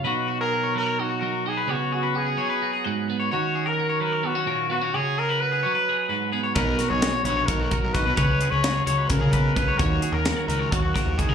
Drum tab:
HH |-------|-------|-------|-------|
SD |-------|-------|-------|-------|
BD |-------|-------|-------|-------|

HH |xxxxxxx|xxxxxxx|xxxxxxx|
SD |-oo---o|--o----|--o--o-|
BD |o---ooo|o---ooo|o---ooo|